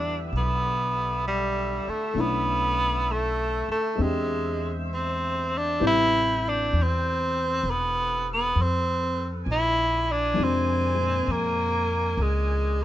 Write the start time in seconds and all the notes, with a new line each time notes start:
Already playing: E2 D3 G3 B3 D4 E4 G4 B4 E5
0.32 B1 A4
0.37 B3
1.28 G3
1.88 A3, muted upright bass stroke
2.14 B1 A3 C#4 D4 C#5
2.18 B3 E4
3.11 A3
3.68 A3, muted upright bass stroke
3.95 E2 G#3 C4 C5
4.00 G#3 D4 G4
4.94 C4
5.58 D4
5.80 A1 C3 G3 E4 A4 B4 G5
5.87 E4
6.49 D4
6.73 E2
6.83 C4
7.63 E1 A4
7.70 B3
8.34 B3
8.56 F2
8.62 C4
9.44 A#1 A#4 D5 G#5
9.52 E4
10.12 D4
10.34 F2 C3 F3 G#3
10.39 D4
10.44 C4
10.95 A#2 G#3
11.27 F2
11.32 A#3
12.17 C#2
12.22 G#3